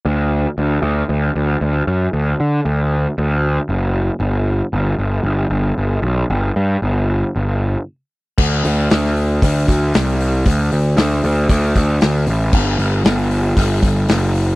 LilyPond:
<<
  \new Staff \with { instrumentName = "Picked electric bass" } { \clef bass \time 4/4 \key d \major \tempo 4 = 115 d,4 d,8 d,8 d,8 d,8 d,8 fis,8 | d,8 d8 d,4 d,4 fis,,4 | g,,4 g,,8 g,,8 g,,8 g,,8 g,,8 b,,8 | g,,8 g,8 g,,4 g,,4 r4 |
d,8 d,8 d,4 d,8 d,8 c,4 | d,8 d,8 d,8 d,8 d,8 d,8 d,8 a,,8 | g,,8 g,,8 g,,4 g,,8 g,,8 fis,,4 | }
  \new DrumStaff \with { instrumentName = "Drums" } \drummode { \time 4/4 r4 r4 r4 r4 | r4 r4 r4 r4 | r4 r4 r4 r4 | r4 r4 r4 r4 |
<cymc bd>8 hho8 <hho sn>16 sn16 hho8 <hho bd>8 <hho bd>8 <hho sn>8 hho8 | <hho bd>8 hho8 <hho sn>16 sn16 hho8 <hho bd>8 <hho bd>8 <hho sn>8 hho8 | <cymc bd>8 hho8 <hho sn>8 hho8 <hho bd>8 <hho bd>8 <hho sn>8 hho8 | }
>>